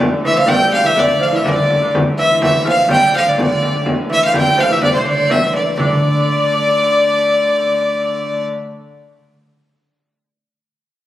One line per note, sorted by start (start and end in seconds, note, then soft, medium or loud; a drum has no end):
0.00 1.94 D3 medium
0.00 1.94 A3 medium
0.24 0.36 E3 medium
0.24 0.50 E5 medium
0.24 0.37 E5 medium
0.36 0.46 F3 medium
0.36 0.50 F5 medium
0.46 0.85 G3 medium
0.46 0.85 G5 medium
0.46 0.73 G5 loud
0.46 frame drum medium
0.73 0.88 F5 medium
0.73 frame drum medium
0.83 0.95 E3 medium
0.83 0.91 E5 medium
0.83 1.01 E5 medium
0.96 1.21 D3 medium
0.96 1.08 D5 medium
0.96 1.24 D5 medium
0.96 frame drum medium
1.19 1.33 F3 medium
1.19 1.32 F5 medium
1.19 1.37 F5 medium
1.32 1.43 E3 medium
1.32 1.44 E5 medium
1.36 1.47 E5 medium
1.44 1.81 D3 medium
1.44 1.79 D5 medium
1.44 frame drum medium
1.50 1.93 D5 medium
1.70 frame drum medium
1.81 1.93 D3 medium
1.81 1.86 D5 medium
1.94 5.78 D3 medium
1.94 5.78 A3 medium
1.94 frame drum medium
2.18 2.43 E3 medium
2.18 2.40 E5 medium
2.18 2.41 E5 medium
2.41 2.68 E3 medium
2.41 2.64 E5 medium
2.41 2.65 E5 medium
2.41 frame drum medium
2.65 2.91 F3 medium
2.65 2.76 F5 medium
2.65 2.90 F5 medium
2.65 frame drum medium
2.89 2.96 G3 loud
2.89 3.12 G5 medium
2.89 3.14 G5 loud
2.89 frame drum medium
2.97 3.02 G3 medium
3.03 3.12 G3 medium
3.13 3.26 F3 medium
3.13 3.15 G3 medium
3.13 3.20 F5 medium
3.13 3.30 F5 medium
3.26 3.38 D3 medium
3.26 3.38 D5 medium
3.26 3.40 D5 medium
3.38 3.83 D3 medium
3.38 3.83 D5 medium
3.38 3.85 D5 medium
3.38 frame drum medium
3.63 frame drum medium
3.86 frame drum medium
4.10 4.32 E3 medium
4.10 4.25 E5 medium
4.10 4.23 E5 loud
4.23 4.28 F5 medium
4.23 4.35 F5 medium
4.23 4.30 G5 medium
4.28 4.34 F5 medium
4.33 4.57 G3 medium
4.33 4.62 G5 medium
4.33 4.62 G5 loud
4.33 frame drum medium
4.57 4.70 F3 medium
4.57 4.74 F5 medium
4.57 4.71 F5 medium
4.57 frame drum medium
4.69 4.81 E3 medium
4.69 4.85 E5 medium
4.69 4.82 E5 medium
4.82 4.94 D3 medium
4.82 4.92 D5 medium
4.82 4.99 D5 medium
4.82 frame drum medium
4.93 5.05 C3 medium
4.93 5.05 C5 medium
4.97 5.32 C5 medium
5.06 5.29 D3 medium
5.06 5.33 D5 medium
5.30 5.74 E3 medium
5.30 5.54 E5 medium
5.30 5.55 E5 medium
5.30 frame drum medium
5.54 5.77 D5 medium
5.54 5.67 D5 medium
5.54 frame drum medium
5.78 8.50 D3 medium
5.78 9.15 D3 medium
5.78 8.49 A3 medium
5.78 8.45 D5 loud
5.78 8.45 D5 medium
5.78 frame drum medium